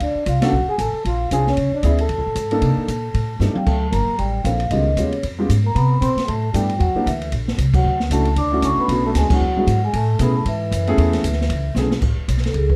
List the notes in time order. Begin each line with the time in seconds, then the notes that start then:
0.00 D2 D4 D5, kick, ride
0.15 muted upright bass stroke
0.26 C2 F4 F5, kick, hi-hat pedal, ride
0.41 C#4 D4 F#4 A4 F#5, snare, ride
0.52 B1
0.67 G#4 G#5, muted upright bass stroke
0.78 A1 A4 A5, kick, hi-hat pedal, ride
0.93 muted upright bass stroke
1.05 A#1 F4 F5, kick, ride
1.31 C2 C4 D4 F4 G#4 G#5, kick, hi-hat pedal, ride
1.47 C#4 C#5, snare
1.57 C#2, kick, ride
1.71 D4 D5, muted upright bass stroke
1.83 D2 B3 C#4 E4 G#4 E5, kick, hi-hat pedal, ride
1.98 A4 A5, ride
2.09 E2, kick, ride
2.18 C#2
2.26 A1
2.35 G#2, kick, hi-hat pedal, ride
2.51 A#3 D4 D#4 A4, ride
2.61 C3, kick, ride
2.77 muted upright bass stroke
2.88 A#2, kick, hi-hat pedal, ride
3.14 A2, kick, ride
3.40 G2 A3 D4 D#4 G4, snare, hi-hat pedal
3.53 F3 G3 F5, muted upright bass stroke, high tom
3.58 G5
3.66 D2 A3 A5, kick, crash
3.91 G1 A#3 A#5, kick, hi-hat pedal, ride
4.07 muted upright bass stroke
4.18 A1 G3 G5, kick, ride
4.44 A#1 F3 A#3 C4 D4 F4 A4 F5, kick, hi-hat pedal, ride
4.60 ride
4.69 C#2 D#3 G#3 B3 C#4 F4 G4 D#5, kick, ride
4.97 D#2 C#3 G#3 B3 C#4 F4 G4 C#5, kick, hi-hat pedal, ride
5.12 ride
5.23 F2, kick, ride
5.39 G#3 B3 C#4 F4 G4
5.49 G#2, kick, hi-hat pedal, ride
5.65 A#3 A#5
5.75 C3 B3 B5, kick, ride
6.01 B2 C4 C6, kick, hi-hat pedal, ride
6.16 muted upright bass stroke, snare, ride
6.26 A2 A3 A5, kick, ride
6.52 G2 G3 A3 B3 D4 E4 G4 G5, kick, hi-hat pedal, ride
6.69 ride
6.77 E2 F#3 F#5, kick, ride
6.95 A#3 C4 D4 E4 G4, muted upright bass stroke
7.05 D2 E3 E5, kick, hi-hat pedal, ride
7.22 ride
7.32 A#1, kick, ride
7.48 snare
7.58 C2, kick, hi-hat pedal, ride
7.74 F#3 F#5, kick, crash
7.84 D2
8.00 snare
8.10 C#2 A3 C#4 D4 E4 F#4 A5, kick, hi-hat pedal, ride
8.25 ride
8.36 D2 D4 D6, kick, ride
8.52 A3 C#4 D4 E4 F#4
8.62 C#2 C#4 C#6, kick, hi-hat pedal, ride
8.77 B3 B5, muted upright bass stroke
8.88 B1 A3 B3 C#4 D4 F#4, kick, ride
9.06 A3 A5
9.14 D2 G#3 G#5, kick, snare, hi-hat pedal, ride
9.30 F#3 G#3 B3 D4 E4 F#4 F#5, muted upright bass stroke, kick, crash
9.40 E2
9.55 G#3 B3 D4 E4 F#4, muted upright bass stroke
9.67 G#2, kick, hi-hat pedal, ride
9.84 G#3 G#5
9.93 A2 A3 A5, kick, ride
10.19 B2 A3 B3 C#4 E4 G#4 B5, kick, hi-hat pedal, ride
10.37 A3 A5
10.45 G#2 E3 E5, kick, ride
10.71 F#2, kick, hi-hat pedal, ride
10.87 A3 B3 C#4 E4 G#4, ride
10.98 E2, kick, ride
11.13 snare, ride
11.24 D2, kick, hi-hat pedal, ride
11.32 snare
11.41 snare
11.49 C#2, kick, ride
11.75 B1 A3 B3 C#4 E4 G#4, snare, hi-hat pedal
11.91 snare
12.02 A1, kick, crash
12.17 muted upright bass stroke
12.28 B1, kick, hi-hat pedal, ride
12.37 snare
12.44 A4, snare, ride
12.54 C#2 G#4, kick, ride
12.70 B4, kick